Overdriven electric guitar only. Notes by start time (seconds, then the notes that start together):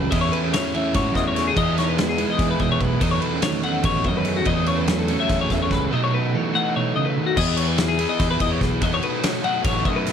Already playing: F#3 A3 C#4 F#4
0.12 E3 A3 C#4 E4
0.74 E3 A3 C#4 E4
1.57 E3 G#3 B3 E4
2.17 E3 G#3 B3 E4
3.01 B2 F#3 A3 D#4
3.63 B2 F#3 A3 D#4
4.46 F#2 C#3 F#3 A3 C#4
5.08 F#2 C#3 F#3 A3 C#4
5.91 B2 F#3 A3 D#4
6.54 B2 F#3 A3 D#4
7.37 E3 B3 E4 G#4
7.99 E3 B3 E4 G#4
8.82 B2 F#3 A3 D#4 F#4
9.43 B2 F#3 A3 D#4 F#4